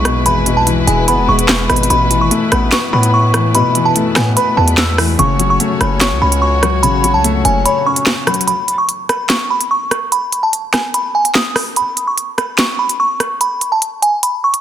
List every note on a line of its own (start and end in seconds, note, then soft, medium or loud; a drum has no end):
0.00 0.27 B1 loud
0.00 0.26 E2 loud
0.00 0.05 B2 medium
0.00 0.67 E3 medium
0.00 0.87 G#3 medium
0.00 1.86 G#3 medium
0.00 0.46 B3 loud
0.00 5.15 E4 medium
0.00 5.15 B4 medium
0.00 0.23 C#6 medium
0.05 0.45 B2 medium
0.05 cross-stick loud
0.05 closed hi-hat medium
0.26 0.58 G#1 loud
0.26 1.28 E2 medium
0.26 0.55 B5 loud
0.26 closed hi-hat medium
0.46 1.49 B2 medium
0.46 closed hi-hat medium
0.56 0.86 B1 loud
0.56 0.65 A5 medium
0.67 1.70 E3 medium
0.67 closed hi-hat medium
0.87 1.09 E1 loud
0.87 1.27 G#3 medium
0.87 1.04 G#5 medium
0.87 closed hi-hat medium
1.08 1.20 F#1 loud
1.08 1.90 B3 medium
1.08 1.24 B5 medium
1.08 closed hi-hat medium
1.18 1.28 E1 loud
1.28 1.68 E1 loud
1.28 1.90 G#3 medium
1.28 1.67 C#6 medium
1.39 closed hi-hat medium
1.48 snare loud
1.48 clap medium
1.69 1.89 G#1 loud
1.69 1.88 B2 medium
1.69 1.86 B5 medium
1.69 cross-stick loud
1.69 closed hi-hat soft
1.76 closed hi-hat medium
1.83 closed hi-hat medium
1.90 2.22 A1 loud
1.90 2.93 B2 medium
1.90 8.44 A3 medium
1.90 2.19 B5 loud
1.90 closed hi-hat medium
2.10 3.13 E3 medium
2.10 closed hi-hat medium
2.21 2.31 G#1 loud
2.21 2.29 C#6 medium
2.31 3.34 A3 medium
2.31 closed hi-hat medium
2.52 2.72 A1 loud
2.52 2.91 B3 medium
2.52 2.69 B5 medium
2.52 cross-stick loud
2.52 closed hi-hat medium
2.72 3.75 B4 loud
2.72 2.89 C#6 medium
2.72 snare loud
2.72 clap medium
2.72 closed hi-hat medium
2.93 3.62 A2 loud
2.93 3.96 B3 medium
2.93 3.09 B5 medium
3.03 closed hi-hat medium
3.14 3.52 C#6 medium
3.34 3.74 E3 medium
3.34 cross-stick loud
3.34 closed hi-hat medium
3.54 4.57 B2 loud
3.54 3.84 B5 medium
3.54 closed hi-hat medium
3.75 4.78 E3 medium
3.75 closed hi-hat medium
3.85 3.94 A5 medium
3.96 4.98 A3 medium
3.96 closed hi-hat medium
4.16 4.36 A2 loud
4.16 4.56 B3 medium
4.16 4.33 G#5 medium
4.16 cross-stick loud
4.16 snare medium
4.16 closed hi-hat medium
4.37 5.19 B4 loud
4.37 4.53 B5 medium
4.37 closed hi-hat medium
4.57 5.16 E2 loud
4.57 5.19 B3 medium
4.57 4.74 A5 medium
4.68 closed hi-hat medium
4.77 4.94 E6 medium
4.77 snare loud
4.77 clap loud
4.98 5.19 E3 medium
4.98 cross-stick loud
4.98 open hi-hat medium
5.19 5.58 F#1 loud
5.19 6.22 C#3 loud
5.19 8.44 F#4 medium
5.19 8.44 C#5 medium
5.19 5.48 C#6 loud
5.19 closed hi-hat medium
5.39 6.42 F#3 medium
5.39 closed hi-hat medium
5.50 5.58 C#6 medium
5.60 6.63 A3 medium
5.60 closed hi-hat medium
5.80 6.13 F#1 loud
5.80 6.20 C#4 medium
5.80 5.97 B5 medium
5.80 cross-stick loud
5.80 closed hi-hat medium
6.01 7.04 C#5 loud
6.01 6.17 C#6 medium
6.01 snare loud
6.01 clap medium
6.01 closed hi-hat medium
6.11 6.21 C#2 loud
6.22 6.85 C#2 loud
6.22 7.24 C#4 medium
6.22 6.38 B5 medium
6.32 closed hi-hat medium
6.42 6.81 C#6 medium
6.63 7.02 F#3 medium
6.63 cross-stick loud
6.63 closed hi-hat medium
6.83 7.16 A1 loud
6.83 7.86 C#3 medium
6.83 7.12 B5 loud
6.83 closed hi-hat medium
7.04 8.07 F#3 medium
7.04 closed hi-hat medium
7.14 7.43 C#2 loud
7.14 7.22 A5 medium
7.24 8.27 A3 medium
7.24 closed hi-hat medium
7.45 7.65 F#1 loud
7.45 7.84 C#4 medium
7.45 7.61 G#5 medium
7.45 closed hi-hat medium
7.65 8.48 C#5 loud
7.65 7.82 B5 medium
7.65 closed hi-hat medium
7.86 8.48 C#4 medium
7.86 8.25 C#6 medium
7.96 closed hi-hat medium
8.06 snare loud
8.06 clap medium
8.27 8.48 F#3 medium
8.27 8.44 B5 medium
8.27 cross-stick loud
8.27 closed hi-hat soft
8.34 closed hi-hat medium
8.41 closed hi-hat medium
8.47 8.76 B5 loud
8.47 closed hi-hat medium
8.68 closed hi-hat medium
8.78 8.87 C#6 medium
8.89 closed hi-hat medium
9.09 9.26 B5 medium
9.09 cross-stick loud
9.09 closed hi-hat medium
9.29 9.46 C#6 medium
9.29 snare loud
9.29 clap medium
9.29 closed hi-hat medium
9.50 9.67 B5 medium
9.61 closed hi-hat medium
9.71 10.10 C#6 medium
9.91 cross-stick loud
9.91 closed hi-hat medium
10.12 10.41 B5 loud
10.12 closed hi-hat medium
10.32 closed hi-hat medium
10.43 10.51 A5 medium
10.53 closed hi-hat medium
10.73 10.90 G#5 medium
10.73 cross-stick loud
10.73 snare medium
10.73 closed hi-hat medium
10.94 11.11 B5 medium
10.94 closed hi-hat medium
11.15 11.31 G#5 medium
11.25 closed hi-hat medium
11.35 11.52 D#6 medium
11.35 snare loud
11.35 clap medium
11.56 cross-stick loud
11.56 open hi-hat medium
11.76 12.06 B5 medium
11.76 closed hi-hat medium
11.97 closed hi-hat medium
12.07 12.16 C#6 medium
12.18 closed hi-hat medium
12.38 12.54 B5 medium
12.38 cross-stick loud
12.38 closed hi-hat medium
12.58 12.75 C#6 medium
12.58 snare loud
12.58 clap medium
12.58 closed hi-hat medium
12.79 12.96 B5 medium
12.89 closed hi-hat medium
13.00 13.38 C#6 medium
13.20 cross-stick loud
13.20 closed hi-hat medium
13.41 13.70 B5 loud
13.41 closed hi-hat medium
13.61 closed hi-hat medium
13.72 13.80 A5 medium
13.82 closed hi-hat medium
14.02 14.19 G#5 medium
14.02 closed hi-hat medium
14.23 14.40 B5 medium
14.23 closed hi-hat medium
14.44 14.61 C#6 medium
14.54 closed hi-hat medium